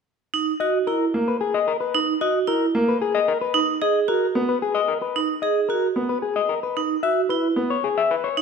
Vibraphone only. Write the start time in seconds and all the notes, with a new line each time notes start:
0.34 D#4
0.61 F#4
0.88 E4
1.94 D#4
2.21 F#4
2.47 E4
3.54 D#4
3.82 G#4
4.08 F#4
5.16 D#4
5.43 G#4
5.70 F#4
6.77 D#4
7.03 F#4
7.30 E4
8.37 D#4